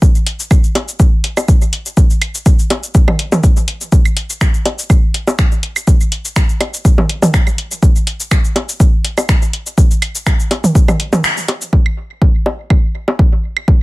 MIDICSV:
0, 0, Header, 1, 2, 480
1, 0, Start_track
1, 0, Tempo, 487805
1, 21, Time_signature, 4, 2, 24, 8
1, 13607, End_track
2, 0, Start_track
2, 0, Title_t, "Drums"
2, 21, Note_on_c, 9, 36, 120
2, 22, Note_on_c, 9, 82, 52
2, 119, Note_off_c, 9, 36, 0
2, 120, Note_off_c, 9, 82, 0
2, 150, Note_on_c, 9, 82, 27
2, 248, Note_off_c, 9, 82, 0
2, 261, Note_on_c, 9, 42, 98
2, 359, Note_off_c, 9, 42, 0
2, 390, Note_on_c, 9, 82, 38
2, 489, Note_off_c, 9, 82, 0
2, 500, Note_on_c, 9, 76, 62
2, 501, Note_on_c, 9, 36, 116
2, 501, Note_on_c, 9, 42, 37
2, 501, Note_on_c, 9, 82, 50
2, 599, Note_off_c, 9, 36, 0
2, 599, Note_off_c, 9, 42, 0
2, 599, Note_off_c, 9, 76, 0
2, 599, Note_off_c, 9, 82, 0
2, 630, Note_on_c, 9, 82, 29
2, 728, Note_off_c, 9, 82, 0
2, 740, Note_on_c, 9, 61, 56
2, 741, Note_on_c, 9, 42, 96
2, 839, Note_off_c, 9, 42, 0
2, 839, Note_off_c, 9, 61, 0
2, 869, Note_on_c, 9, 82, 40
2, 968, Note_off_c, 9, 82, 0
2, 980, Note_on_c, 9, 82, 51
2, 981, Note_on_c, 9, 36, 120
2, 1078, Note_off_c, 9, 82, 0
2, 1079, Note_off_c, 9, 36, 0
2, 1220, Note_on_c, 9, 42, 92
2, 1318, Note_off_c, 9, 42, 0
2, 1349, Note_on_c, 9, 82, 39
2, 1350, Note_on_c, 9, 61, 54
2, 1350, Note_on_c, 9, 76, 62
2, 1447, Note_off_c, 9, 82, 0
2, 1448, Note_off_c, 9, 61, 0
2, 1448, Note_off_c, 9, 76, 0
2, 1460, Note_on_c, 9, 42, 38
2, 1460, Note_on_c, 9, 82, 51
2, 1461, Note_on_c, 9, 36, 124
2, 1559, Note_off_c, 9, 36, 0
2, 1559, Note_off_c, 9, 42, 0
2, 1559, Note_off_c, 9, 82, 0
2, 1589, Note_on_c, 9, 82, 27
2, 1687, Note_off_c, 9, 82, 0
2, 1700, Note_on_c, 9, 42, 96
2, 1799, Note_off_c, 9, 42, 0
2, 1829, Note_on_c, 9, 82, 41
2, 1928, Note_off_c, 9, 82, 0
2, 1940, Note_on_c, 9, 36, 118
2, 1940, Note_on_c, 9, 82, 51
2, 2039, Note_off_c, 9, 36, 0
2, 2039, Note_off_c, 9, 82, 0
2, 2069, Note_on_c, 9, 82, 26
2, 2167, Note_off_c, 9, 82, 0
2, 2180, Note_on_c, 9, 42, 91
2, 2181, Note_on_c, 9, 76, 61
2, 2278, Note_off_c, 9, 42, 0
2, 2279, Note_off_c, 9, 76, 0
2, 2309, Note_on_c, 9, 82, 40
2, 2407, Note_off_c, 9, 82, 0
2, 2420, Note_on_c, 9, 42, 36
2, 2420, Note_on_c, 9, 82, 49
2, 2421, Note_on_c, 9, 36, 117
2, 2518, Note_off_c, 9, 42, 0
2, 2518, Note_off_c, 9, 82, 0
2, 2519, Note_off_c, 9, 36, 0
2, 2549, Note_on_c, 9, 82, 28
2, 2647, Note_off_c, 9, 82, 0
2, 2660, Note_on_c, 9, 42, 95
2, 2661, Note_on_c, 9, 61, 56
2, 2758, Note_off_c, 9, 42, 0
2, 2759, Note_off_c, 9, 61, 0
2, 2789, Note_on_c, 9, 82, 38
2, 2887, Note_off_c, 9, 82, 0
2, 2900, Note_on_c, 9, 36, 121
2, 2900, Note_on_c, 9, 82, 51
2, 2998, Note_off_c, 9, 82, 0
2, 2999, Note_off_c, 9, 36, 0
2, 3029, Note_on_c, 9, 47, 76
2, 3029, Note_on_c, 9, 61, 55
2, 3029, Note_on_c, 9, 76, 60
2, 3128, Note_off_c, 9, 47, 0
2, 3128, Note_off_c, 9, 61, 0
2, 3128, Note_off_c, 9, 76, 0
2, 3140, Note_on_c, 9, 42, 93
2, 3238, Note_off_c, 9, 42, 0
2, 3269, Note_on_c, 9, 47, 87
2, 3269, Note_on_c, 9, 61, 55
2, 3269, Note_on_c, 9, 82, 36
2, 3367, Note_off_c, 9, 82, 0
2, 3368, Note_off_c, 9, 47, 0
2, 3368, Note_off_c, 9, 61, 0
2, 3380, Note_on_c, 9, 36, 122
2, 3380, Note_on_c, 9, 42, 38
2, 3380, Note_on_c, 9, 82, 50
2, 3479, Note_off_c, 9, 36, 0
2, 3479, Note_off_c, 9, 42, 0
2, 3479, Note_off_c, 9, 82, 0
2, 3509, Note_on_c, 9, 82, 28
2, 3607, Note_off_c, 9, 82, 0
2, 3619, Note_on_c, 9, 42, 94
2, 3718, Note_off_c, 9, 42, 0
2, 3749, Note_on_c, 9, 82, 38
2, 3847, Note_off_c, 9, 82, 0
2, 3860, Note_on_c, 9, 82, 49
2, 3861, Note_on_c, 9, 36, 110
2, 3958, Note_off_c, 9, 82, 0
2, 3959, Note_off_c, 9, 36, 0
2, 3988, Note_on_c, 9, 82, 27
2, 3989, Note_on_c, 9, 76, 59
2, 4087, Note_off_c, 9, 82, 0
2, 4088, Note_off_c, 9, 76, 0
2, 4099, Note_on_c, 9, 42, 90
2, 4198, Note_off_c, 9, 42, 0
2, 4229, Note_on_c, 9, 82, 39
2, 4327, Note_off_c, 9, 82, 0
2, 4341, Note_on_c, 9, 26, 88
2, 4341, Note_on_c, 9, 36, 112
2, 4341, Note_on_c, 9, 42, 36
2, 4341, Note_on_c, 9, 82, 49
2, 4439, Note_off_c, 9, 26, 0
2, 4439, Note_off_c, 9, 36, 0
2, 4439, Note_off_c, 9, 42, 0
2, 4439, Note_off_c, 9, 82, 0
2, 4469, Note_on_c, 9, 82, 28
2, 4567, Note_off_c, 9, 82, 0
2, 4580, Note_on_c, 9, 42, 96
2, 4581, Note_on_c, 9, 61, 53
2, 4679, Note_off_c, 9, 42, 0
2, 4679, Note_off_c, 9, 61, 0
2, 4710, Note_on_c, 9, 82, 39
2, 4809, Note_off_c, 9, 82, 0
2, 4821, Note_on_c, 9, 36, 117
2, 4821, Note_on_c, 9, 76, 61
2, 4821, Note_on_c, 9, 82, 50
2, 4919, Note_off_c, 9, 36, 0
2, 4919, Note_off_c, 9, 76, 0
2, 4920, Note_off_c, 9, 82, 0
2, 5061, Note_on_c, 9, 42, 90
2, 5159, Note_off_c, 9, 42, 0
2, 5190, Note_on_c, 9, 61, 54
2, 5190, Note_on_c, 9, 82, 38
2, 5288, Note_off_c, 9, 61, 0
2, 5288, Note_off_c, 9, 82, 0
2, 5301, Note_on_c, 9, 26, 89
2, 5301, Note_on_c, 9, 36, 121
2, 5301, Note_on_c, 9, 42, 35
2, 5301, Note_on_c, 9, 82, 49
2, 5399, Note_off_c, 9, 26, 0
2, 5399, Note_off_c, 9, 36, 0
2, 5399, Note_off_c, 9, 42, 0
2, 5399, Note_off_c, 9, 82, 0
2, 5429, Note_on_c, 9, 82, 28
2, 5528, Note_off_c, 9, 82, 0
2, 5540, Note_on_c, 9, 42, 92
2, 5639, Note_off_c, 9, 42, 0
2, 5669, Note_on_c, 9, 76, 61
2, 5669, Note_on_c, 9, 82, 39
2, 5768, Note_off_c, 9, 76, 0
2, 5768, Note_off_c, 9, 82, 0
2, 5781, Note_on_c, 9, 36, 108
2, 5781, Note_on_c, 9, 82, 51
2, 5879, Note_off_c, 9, 36, 0
2, 5879, Note_off_c, 9, 82, 0
2, 5910, Note_on_c, 9, 82, 29
2, 6008, Note_off_c, 9, 82, 0
2, 6021, Note_on_c, 9, 42, 89
2, 6119, Note_off_c, 9, 42, 0
2, 6150, Note_on_c, 9, 82, 41
2, 6248, Note_off_c, 9, 82, 0
2, 6261, Note_on_c, 9, 26, 88
2, 6261, Note_on_c, 9, 36, 110
2, 6261, Note_on_c, 9, 42, 35
2, 6261, Note_on_c, 9, 82, 52
2, 6359, Note_off_c, 9, 26, 0
2, 6359, Note_off_c, 9, 36, 0
2, 6359, Note_off_c, 9, 42, 0
2, 6359, Note_off_c, 9, 82, 0
2, 6389, Note_on_c, 9, 82, 29
2, 6488, Note_off_c, 9, 82, 0
2, 6500, Note_on_c, 9, 42, 91
2, 6500, Note_on_c, 9, 61, 52
2, 6500, Note_on_c, 9, 76, 63
2, 6598, Note_off_c, 9, 61, 0
2, 6598, Note_off_c, 9, 76, 0
2, 6599, Note_off_c, 9, 42, 0
2, 6630, Note_on_c, 9, 82, 39
2, 6728, Note_off_c, 9, 82, 0
2, 6740, Note_on_c, 9, 36, 113
2, 6741, Note_on_c, 9, 82, 53
2, 6839, Note_off_c, 9, 36, 0
2, 6839, Note_off_c, 9, 82, 0
2, 6869, Note_on_c, 9, 47, 74
2, 6869, Note_on_c, 9, 61, 55
2, 6967, Note_off_c, 9, 47, 0
2, 6967, Note_off_c, 9, 61, 0
2, 6981, Note_on_c, 9, 42, 85
2, 7079, Note_off_c, 9, 42, 0
2, 7109, Note_on_c, 9, 47, 84
2, 7109, Note_on_c, 9, 61, 52
2, 7110, Note_on_c, 9, 82, 39
2, 7207, Note_off_c, 9, 47, 0
2, 7207, Note_off_c, 9, 61, 0
2, 7209, Note_off_c, 9, 82, 0
2, 7220, Note_on_c, 9, 36, 118
2, 7222, Note_on_c, 9, 26, 88
2, 7222, Note_on_c, 9, 42, 35
2, 7222, Note_on_c, 9, 82, 52
2, 7319, Note_off_c, 9, 36, 0
2, 7320, Note_off_c, 9, 26, 0
2, 7320, Note_off_c, 9, 42, 0
2, 7320, Note_off_c, 9, 82, 0
2, 7349, Note_on_c, 9, 76, 64
2, 7350, Note_on_c, 9, 82, 29
2, 7447, Note_off_c, 9, 76, 0
2, 7448, Note_off_c, 9, 82, 0
2, 7461, Note_on_c, 9, 42, 85
2, 7559, Note_off_c, 9, 42, 0
2, 7590, Note_on_c, 9, 82, 41
2, 7688, Note_off_c, 9, 82, 0
2, 7700, Note_on_c, 9, 36, 110
2, 7702, Note_on_c, 9, 82, 55
2, 7799, Note_off_c, 9, 36, 0
2, 7800, Note_off_c, 9, 82, 0
2, 7830, Note_on_c, 9, 82, 29
2, 7929, Note_off_c, 9, 82, 0
2, 7941, Note_on_c, 9, 42, 89
2, 8039, Note_off_c, 9, 42, 0
2, 8070, Note_on_c, 9, 82, 43
2, 8169, Note_off_c, 9, 82, 0
2, 8180, Note_on_c, 9, 36, 107
2, 8180, Note_on_c, 9, 76, 67
2, 8181, Note_on_c, 9, 26, 89
2, 8181, Note_on_c, 9, 42, 35
2, 8181, Note_on_c, 9, 82, 53
2, 8278, Note_off_c, 9, 76, 0
2, 8279, Note_off_c, 9, 36, 0
2, 8280, Note_off_c, 9, 26, 0
2, 8280, Note_off_c, 9, 42, 0
2, 8280, Note_off_c, 9, 82, 0
2, 8310, Note_on_c, 9, 82, 29
2, 8409, Note_off_c, 9, 82, 0
2, 8420, Note_on_c, 9, 61, 52
2, 8421, Note_on_c, 9, 42, 93
2, 8518, Note_off_c, 9, 61, 0
2, 8520, Note_off_c, 9, 42, 0
2, 8550, Note_on_c, 9, 82, 44
2, 8648, Note_off_c, 9, 82, 0
2, 8660, Note_on_c, 9, 36, 113
2, 8661, Note_on_c, 9, 82, 56
2, 8759, Note_off_c, 9, 36, 0
2, 8760, Note_off_c, 9, 82, 0
2, 8901, Note_on_c, 9, 42, 87
2, 8999, Note_off_c, 9, 42, 0
2, 9029, Note_on_c, 9, 61, 51
2, 9029, Note_on_c, 9, 76, 64
2, 9030, Note_on_c, 9, 82, 40
2, 9128, Note_off_c, 9, 61, 0
2, 9128, Note_off_c, 9, 76, 0
2, 9128, Note_off_c, 9, 82, 0
2, 9140, Note_on_c, 9, 36, 117
2, 9141, Note_on_c, 9, 26, 93
2, 9141, Note_on_c, 9, 42, 36
2, 9141, Note_on_c, 9, 82, 54
2, 9239, Note_off_c, 9, 26, 0
2, 9239, Note_off_c, 9, 36, 0
2, 9239, Note_off_c, 9, 42, 0
2, 9239, Note_off_c, 9, 82, 0
2, 9270, Note_on_c, 9, 82, 30
2, 9369, Note_off_c, 9, 82, 0
2, 9381, Note_on_c, 9, 42, 88
2, 9480, Note_off_c, 9, 42, 0
2, 9510, Note_on_c, 9, 82, 43
2, 9609, Note_off_c, 9, 82, 0
2, 9620, Note_on_c, 9, 36, 116
2, 9622, Note_on_c, 9, 82, 55
2, 9719, Note_off_c, 9, 36, 0
2, 9720, Note_off_c, 9, 82, 0
2, 9750, Note_on_c, 9, 82, 31
2, 9849, Note_off_c, 9, 82, 0
2, 9860, Note_on_c, 9, 76, 69
2, 9861, Note_on_c, 9, 42, 88
2, 9959, Note_off_c, 9, 76, 0
2, 9960, Note_off_c, 9, 42, 0
2, 9990, Note_on_c, 9, 82, 45
2, 10088, Note_off_c, 9, 82, 0
2, 10101, Note_on_c, 9, 26, 90
2, 10101, Note_on_c, 9, 36, 111
2, 10101, Note_on_c, 9, 42, 36
2, 10101, Note_on_c, 9, 82, 55
2, 10199, Note_off_c, 9, 36, 0
2, 10200, Note_off_c, 9, 26, 0
2, 10200, Note_off_c, 9, 42, 0
2, 10200, Note_off_c, 9, 82, 0
2, 10230, Note_on_c, 9, 82, 31
2, 10329, Note_off_c, 9, 82, 0
2, 10341, Note_on_c, 9, 42, 93
2, 10341, Note_on_c, 9, 61, 52
2, 10439, Note_off_c, 9, 42, 0
2, 10439, Note_off_c, 9, 61, 0
2, 10469, Note_on_c, 9, 47, 83
2, 10471, Note_on_c, 9, 82, 44
2, 10568, Note_off_c, 9, 47, 0
2, 10569, Note_off_c, 9, 82, 0
2, 10581, Note_on_c, 9, 36, 112
2, 10582, Note_on_c, 9, 82, 57
2, 10679, Note_off_c, 9, 36, 0
2, 10680, Note_off_c, 9, 82, 0
2, 10710, Note_on_c, 9, 47, 78
2, 10710, Note_on_c, 9, 61, 55
2, 10710, Note_on_c, 9, 76, 67
2, 10711, Note_on_c, 9, 82, 30
2, 10808, Note_off_c, 9, 47, 0
2, 10808, Note_off_c, 9, 61, 0
2, 10808, Note_off_c, 9, 76, 0
2, 10809, Note_off_c, 9, 82, 0
2, 10821, Note_on_c, 9, 42, 89
2, 10920, Note_off_c, 9, 42, 0
2, 10949, Note_on_c, 9, 47, 90
2, 10949, Note_on_c, 9, 61, 54
2, 10950, Note_on_c, 9, 82, 41
2, 11047, Note_off_c, 9, 47, 0
2, 11047, Note_off_c, 9, 61, 0
2, 11049, Note_off_c, 9, 82, 0
2, 11062, Note_on_c, 9, 26, 98
2, 11062, Note_on_c, 9, 42, 37
2, 11062, Note_on_c, 9, 82, 54
2, 11160, Note_off_c, 9, 26, 0
2, 11160, Note_off_c, 9, 42, 0
2, 11160, Note_off_c, 9, 82, 0
2, 11190, Note_on_c, 9, 82, 31
2, 11288, Note_off_c, 9, 82, 0
2, 11300, Note_on_c, 9, 42, 91
2, 11300, Note_on_c, 9, 61, 67
2, 11398, Note_off_c, 9, 61, 0
2, 11399, Note_off_c, 9, 42, 0
2, 11429, Note_on_c, 9, 82, 44
2, 11528, Note_off_c, 9, 82, 0
2, 11541, Note_on_c, 9, 36, 106
2, 11639, Note_off_c, 9, 36, 0
2, 11669, Note_on_c, 9, 76, 60
2, 11768, Note_off_c, 9, 76, 0
2, 12021, Note_on_c, 9, 36, 107
2, 12119, Note_off_c, 9, 36, 0
2, 12260, Note_on_c, 9, 61, 49
2, 12359, Note_off_c, 9, 61, 0
2, 12500, Note_on_c, 9, 76, 63
2, 12501, Note_on_c, 9, 36, 106
2, 12598, Note_off_c, 9, 76, 0
2, 12599, Note_off_c, 9, 36, 0
2, 12869, Note_on_c, 9, 61, 51
2, 12967, Note_off_c, 9, 61, 0
2, 12981, Note_on_c, 9, 36, 109
2, 13079, Note_off_c, 9, 36, 0
2, 13349, Note_on_c, 9, 76, 62
2, 13447, Note_off_c, 9, 76, 0
2, 13461, Note_on_c, 9, 36, 112
2, 13559, Note_off_c, 9, 36, 0
2, 13607, End_track
0, 0, End_of_file